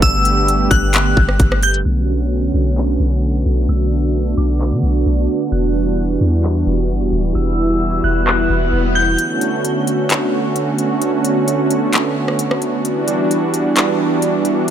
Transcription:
Already playing: D3 G3 A3 B3
0.02 G1 G4 E6, kick, closed hi-hat
0.25 closed hi-hat
0.48 closed hi-hat
0.71 G1 F#6, kick, closed hi-hat
0.94 clap, closed hi-hat
1.17 G1, kick
1.29 cross-stick
1.40 G1, kick, closed hi-hat
1.52 cross-stick
1.63 G6, closed hi-hat
1.74 closed hi-hat
1.86 B1 D3 A3 B3 C#4 F#4
2.54 B1
2.78 clap
3.00 B1
3.46 B1
3.69 B1 D4 E6
4.37 B1 D6
4.61 clap
4.72 D3
4.83 B1
5.06 B1
5.52 E1 E3 G3 F#6, swell
6.21 E2
6.44 clap
6.67 E1
6.90 G1
7.01 E1
7.12 D1
7.35 E1 E4 E6
8.04 E1 F#6
8.27 clap
8.50 E1
8.73 E1
8.95 G6
9.18 D3 A3 B3 C#4 F#4, closed hi-hat
9.41 closed hi-hat
9.65 closed hi-hat
9.87 closed hi-hat
10.10 clap, closed hi-hat
10.56 closed hi-hat
10.79 closed hi-hat
11.02 closed hi-hat
11.25 closed hi-hat
11.48 closed hi-hat
11.71 closed hi-hat
11.93 clap, closed hi-hat
12.28 cross-stick
12.39 closed hi-hat
12.51 cross-stick
12.62 closed hi-hat
12.85 E3 G3 D4 F#4, closed hi-hat
13.08 closed hi-hat
13.31 closed hi-hat
13.54 closed hi-hat
13.76 clap, closed hi-hat
14.22 closed hi-hat
14.45 closed hi-hat

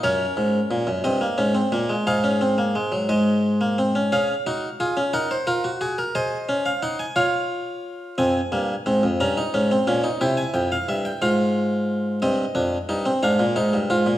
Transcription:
0.03 F#2 C#4 A#4 C#5
0.37 G#2
0.71 A#2
0.87 F#2
1.04 G2 C4 D#5
1.21 A#3
1.38 G#2 C#4
1.55 C4
1.72 A#2 A#3
1.89 G#3
2.07 G#2 D#4 G#4 F5
2.24 C#4
2.41 C4
2.58 A#3
2.75 G#3
2.92 F#3
3.09 G#2 G#3 D#5
3.61 A#3
3.78 C4
3.95 C#4
4.12 C#4 G#4 F5
4.47 D#4 F#4
4.80 F4 G#4
4.97 C#4
5.13 D#4 A#4 F#5
5.31 C5
5.47 F4 A#4
5.64 F#4
5.81 F#4 G#4
5.98 A#4
6.15 G#4 C5 D#5
6.49 C#4
6.66 F5
6.82 D#4 F#5
6.99 G#5
7.16 F4 C#5 F5
8.18 F2 C4 G#5
8.52 G2 A#3
8.86 G#2 C4
9.03 F2
9.20 G2 C#4 A#5
9.37 D#4
9.54 G#2 C#4
9.71 C4
9.87 A#2 C#4
10.04 D#4
10.21 C3 E4 G5
10.37 G#5
10.54 F2 G5
10.72 F5
10.88 G2 E5
11.05 G5
11.22 G#2 F4 F5
12.22 G2 C4 D#5
12.55 F2 D4
12.89 G2 D#4
13.06 C4
13.23 G#2 D4 F5
13.39 A#2
13.56 G#2 D#4
13.73 G2
13.90 G#2 F4
14.06 A#2

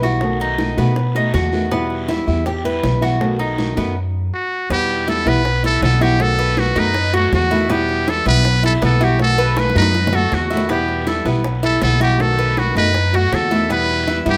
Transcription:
Already playing: B1
0.02 E3 G3 B3 E4 F#4, short guiro
0.21 B2 D#3 A3 B3 F#4, high bongo, long guiro
0.40 D#4, high bongo
0.58 D#3 A3 B3 F#4, high bongo, short guiro
0.77 B2 D#3 A3 B3 F#4, high bongo, short guiro
0.96 muted nylon-string guitar stroke, high bongo, long guiro
1.15 A3 B3 D#4 F#4, high bongo
1.34 E2 F#4, high bongo, low bongo, short guiro
1.52 D#3 A3 B3 F#4, short guiro
1.71 B2 E3 G3 B3 E4, high bongo
1.90 high bongo
2.08 E3 G3 B3 E4, high bongo, short guiro
2.27 E2 E3 G3 B3 E4, high bongo, short guiro
2.46 G4, muted nylon-string guitar stroke, high bongo, long guiro
2.64 G3 B3 E4 B4, high bongo
2.83 B1, high bongo, low bongo, short guiro
3.01 E3 G3 B3 E4 F#4, short guiro
3.20 B2 D#3 A3 B3 F#4, high bongo, long guiro
3.39 D#4, high bongo
3.58 D#3 A3 B3 F#4, high bongo, short guiro
3.76 F#2 D#3 A3 B3 F#4, high bongo, short guiro
4.34 F#4
4.70 E2 B2 E3 G3 B3 E4 G4, high bongo, long guiro
4.89 high bongo
5.07 E3 G3 B3 E4 A4, high bongo, short guiro
5.26 B1 E3 G3 B3 E4 B4, high bongo, short guiro
5.45 muted nylon-string guitar stroke, high bongo, long guiro
5.63 G3 B3 E4 A4, high bongo
5.82 B1 B3 A4, high bongo, low bongo, short guiro
6.01 E3 G3 B3 E4 F#4 G4, short guiro
6.19 B2 D#3 A3 B3 F#4 A4, high bongo
6.39 B4, high bongo
6.57 D#3 A3 B3 F#4, high bongo, short guiro
6.76 F#2 D#3 A3 B3 D#4 F#4 B4, high bongo, short guiro
6.94 muted nylon-string guitar stroke, high bongo, long guiro
7.13 A3 B3 F#4, high bongo
7.32 E2 F#4, high bongo, low bongo, short guiro
7.51 D#3 A3 B3 E4 F#4, short guiro
7.69 B2 E3 G3 B3 E4 G4, high bongo, long guiro
7.89 high bongo
8.07 E3 G3 B3 E4 A4, high bongo, short guiro
8.25 B1 E3 G3 B3 E4 B4, high bongo, short guiro
8.44 muted nylon-string guitar stroke, high bongo, long guiro
8.63 G3 B3 E4 A4, high bongo
8.82 B1 B3 A4, high bongo, low bongo, short guiro
9.00 E3 G3 B3 E4 F#4 G4, short guiro
9.19 B2 D#3 A3 B3 F#4 A4, high bongo, long guiro
9.38 B4, high bongo
9.57 D#3 A3 B3 F#4 B4, high bongo, short guiro
9.69 high bongo
9.75 F#2 D#3 A3 B3 D#4 F#4 B4, short guiro
9.82 high bongo
9.94 muted nylon-string guitar stroke, high bongo, long guiro
10.07 low bongo
10.12 A3 B3 F#4 A4
10.32 E2 F#4, low bongo, short guiro
10.50 D#3 A3 B3 E4 F#4, short guiro
10.57 low bongo
10.69 B2 E3 G3 B3 E4 G4, high bongo, long guiro
10.88 high bongo
11.06 E3 G3 B3 E4 A4, high bongo, short guiro
11.25 B1 E3 G3 B3 E4, high bongo, short guiro
11.44 muted nylon-string guitar stroke, high bongo, long guiro
11.63 G3 B3 E4 A4, high bongo
11.82 B1 B3 A4, high bongo, low bongo, short guiro
12.00 E3 G3 B3 E4 F#4 G4, short guiro
12.18 B2 D#3 A3 B3 F#4 A4, high bongo
12.39 B4, high bongo
12.56 D#3 A3 B3 F#4, high bongo, short guiro
12.75 F#2 D#3 A3 B3 D#4 F#4 B4, high bongo, short guiro
12.94 muted nylon-string guitar stroke, high bongo
13.13 A3 B3 F#4, high bongo
13.32 E2 A4, high bongo, low bongo, short guiro
13.51 D#3 A3 B3 E4 F#4, short guiro
13.69 B2 E3 G3 B3 E4 B4, high bongo, long guiro
13.89 high bongo
14.07 E3 G3 B3 E4, high bongo, short guiro
14.25 G2 E3 G3 B3 E4, high bongo, short guiro
14.29 G4

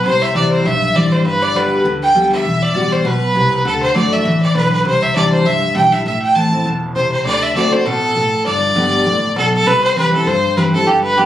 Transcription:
0.05 C2 C3 C5
0.22 E5
0.35 C2 E3 G3 C4 E4 D5
0.52 C5
0.65 B1 G2 E5
0.95 A1 E3 G3 C4 E4 D5
1.12 C5
1.25 G1 G2 B4
1.42 D5
1.55 D3 G3 B3 G4 B4
1.85 D2 D3
2.03 G5
2.15 D3 G3 B3 G4
2.32 E5
2.45 E1 E2
2.62 D5
2.74 A1 E3 G3 B3 F#4
2.92 C5
3.05 B1 B2 B4
3.35 C2 C3
3.65 D2 D3 A4
3.83 C5
3.95 G1 F#3 A3 E4 F#4 D5
4.13 E5
4.25 A1 E3
4.42 D5
4.55 B1 D3 B4
4.73 B4
4.85 C2 C3 C5
5.02 E5
5.15 D2 E3 G3 D4 E4 D5
5.32 C5
5.45 C2 G2 E5
5.75 B1 E3 G3 D4 E4 G5
5.91 D4 E4 E5
6.05 A1 A2 E5
6.22 G5
6.35 E3 A3 C4 E4 A5
6.52 C4 E4
6.65 E1 B2
6.95 C3 C5
7.12 C5
7.25 D2 D3 D5
7.43 E5
7.55 D3 A3 C4 F#4 D5
7.72 C4 F#4 C5
7.85 A1 B2 A4
8.16 A2
8.46 G1 G2 D5
8.75 G1 D3 G3 B3 G4
9.06 A1 A2
9.36 B1 B2 A4
9.54 A4
9.66 C2 C3 B4
9.84 C5
9.96 E3 G3 C4 E4 B4
10.13 C4 E4 A4
10.27 G2 C5
10.56 E3 G3 C4 E4 B4
10.73 C4 E4 A4
10.87 G1 G2 G4
11.03 B4
11.17 D3 G3 B3 G4

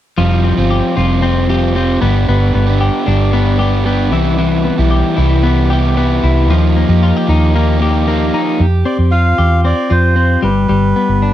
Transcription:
0.18 F1 F3 G3 C4 F4
0.44 C4
0.57 G1 G3 C4 F4
0.70 G4
0.96 F1 F3 G3 C4 F4
1.21 F3 G3 C4 F4
1.48 F3 G3 C4 F4 G4
1.74 F3 G3 C4 F4
2.01 G1 G2 D3 G3 B3 D4 G4
2.29 G1 B3
2.55 G1 B3
2.66 G3 B3 D4 G4
2.81 G4
3.06 G1 G3 B3 D4 G4
3.32 G3 B3 D4 G4
3.58 G3 B3 D4 G4
3.85 G3 B3 D4 G4
4.12 C2 C3 E3 G3 B3 E4 G4
4.39 E3
4.65 B3
4.78 B1 B3 E4 G4
4.91 G4
5.17 C2 G3 B3 E4 G4
5.43 G3 B3 E4 G4
5.70 G3 B3 E4 G4
5.96 G3 B3 E4 G4
6.24 C2 E4
6.48 D#2 D#3 F3 A#3 D#4 G4
6.76 A#3
6.88 F2 A#3 D#4 G4
7.03 F4
7.17 G4
7.27 D#2 F3 A#3 D#4 G4
7.53 F3 A#3 D#4 G4
7.79 F3 A#3 D#4 G4
8.06 F3 A#3 D#4 G4
8.34 D#4
8.60 F2
8.85 C4 D5
8.99 F2
9.11 F4 F5
9.38 E2 G4
9.65 C4 D5
9.90 F2 F4 C5
10.16 C4
10.42 G1 G3 B4
10.69 G1 G3
10.96 B3
11.09 G1
11.22 D4

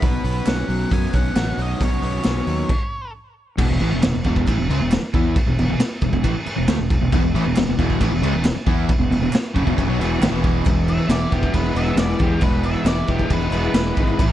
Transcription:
Already playing: B3
0.02 B1 B2 F#3 B3 C#4 F#4 B4, kick, open hi-hat
0.24 B1 B3, open hi-hat
0.35 B3 C#4 F#4
0.46 B1 B2 F#3 B3 C#4 F#4 F#5, snare, clap, open hi-hat
0.58 B3 C#4 F#4
0.68 B1 F#3 B3 C#4 F#4, open hi-hat
0.91 F#2 B3 G#5, kick, open hi-hat
1.03 B3 C#4 F#4
1.13 B1 F#3 B3 C#4 F#4 F#5, kick, clap, open hi-hat
1.36 A1 B2 F#3 B3 C#4 F#4, snare, clap, open hi-hat
1.58 B1 F#3 B3 C#4, open hi-hat
1.62 F#4 D#5
1.81 B1 B2 F#3 B3 C#4 F#4 C#5, kick, open hi-hat
2.02 B1 B3, open hi-hat
2.14 B3 C#4 F#4
2.24 B1 B2 F#3 B3 C#4 F#4, snare, clap, open hi-hat
2.38 B3 C#4 F#4
2.47 D#2 F#3 B3 C#4 F#4, open hi-hat
2.69 kick, crash
3.58 E1 E2 B2, kick, crash
3.69 E1 E2 B2
3.80 A1 A2 E3, crash
3.92 E1 E2 B2
4.03 E1 E2 B2, snare, clap, crash
4.14 E1 E2 B2
4.24 E1 E2 B2 E3, kick, crash
4.36 kick
4.47 A1 A2 E3, kick, clap, crash
4.58 E1 E2 B2
4.68 C#2 C#3 G#3, crash
4.80 E1 E2 B2
4.91 snare, clap, crash
5.02 muted fingered electric bass stroke, muted overdriven electric guitar stroke
5.14 E2 E3 B3 E4, kick, crash
5.36 muted fingered electric bass stroke, muted overdriven electric guitar stroke, kick, crash
5.46 E1 E2 B2
5.58 E1 E2 B2, crash
5.70 E1 E2 B2
5.79 muted fingered electric bass stroke, muted overdriven electric guitar stroke, snare, clap, crash
6.01 E1 E2 B2, kick, crash
6.13 E1 E2 B2, kick
6.23 A1 A2 E3, kick, clap, crash
6.34 muted overdriven electric guitar stroke, muted fingered electric bass stroke
6.46 muted overdriven electric guitar stroke, muted fingered electric bass stroke, crash
6.56 E1 E2 B2
6.68 D2 D3 A3, snare, clap, crash
6.78 E1 E2 B2
6.90 kick, crash
7.01 E1 E2 B2
7.12 E1 E2 B2, kick, crash
7.23 E1 E2 B2
7.34 A1 A2 E3, crash
7.45 E1 E2 B2
7.56 E1 E2 B2, snare, clap, crash
7.68 E1 E2 B2
7.78 E1 E2 B2 E3, kick, crash
7.90 kick
8.00 A1 A2 E3, kick, clap, crash
8.12 E1 E2 B2
8.22 C#2 C#3 G#3, crash
8.33 E1 E2 B2
8.44 snare, clap, crash
8.56 muted distorted electric guitar stroke, muted overdriven electric guitar stroke, muted fingered electric bass stroke
8.66 E2 E3 B3 E4, kick, crash
8.89 muted fingered electric bass stroke, muted overdriven electric guitar stroke, muted distorted electric guitar stroke, kick, crash
8.98 E1 E2 B2
9.10 E1 E2 B2, crash
9.19 E1 E2 B2
9.32 muted overdriven electric guitar stroke, muted fingered electric bass stroke, muted distorted electric guitar stroke, snare, clap, crash
9.54 F#1 F#2 C#3, kick, crash
9.64 E1 E2 B2, kick
9.76 F#1 F#2 C#3, kick, crash
9.87 B1 B2 F#3
9.98 E1 E2 B2 E3, crash
10.20 G#1 G#2 D#3, snare, clap, crash
10.31 E1 E2 B2 E3
10.44 kick, crash
10.65 E1 E2 B2 E3 G#3 B3 E4, kick, crash
10.88 E3 G#3 B3 E4 E5, crash
10.99 E3 G#3 B3 E4
11.08 E1 E2 B2 E3 G#3 B3 E4 D5, snare, clap, crash
11.21 E3 G#3 B3 E4
11.30 E1 B3 G4, kick, crash
11.42 E3 G#3 B3 E4, kick
11.53 E1 G#3 B4, kick, crash
11.65 E3 G#3 B3 E4
11.74 E1 E3 G#3 B3 E4 E5, crash
11.86 E3 G#3 B3 E4
11.96 E1 E2 B2 E3 G#3 B3 E4 D5, snare, clap, crash
12.19 E2 E3 G#3 B3 E4 G4, kick, crash
12.41 E1 E2 B2 E3 G#3 B3 E4 B4, kick, crash
12.63 E3 G#3 B3 E4 E5, crash
12.74 E3 G#3 B3 E4
12.84 E1 E2 B2 E3 G#3 B3 E4 D5, snare, clap, crash
12.95 E3 G#3 B3 E4
13.07 E1 B3 G4, kick, crash
13.18 E3 G#3 B3 E4, kick
13.29 E1 G#3 B4, kick, crash
13.40 E3 G#3 B3 E4
13.51 E1 E3 G#3 B3 E4, crash
13.57 B4
13.63 E3 G#3 B3 E4
13.74 E1 E2 B2 E3 G#3 B3 E4, snare, clap, crash
13.95 G#1 E3 G#3 B3 E4, kick, crash
14.08 E3 G#3 B3 E4
14.19 A1 A2 E3 A3 C#4 E4, kick, crash

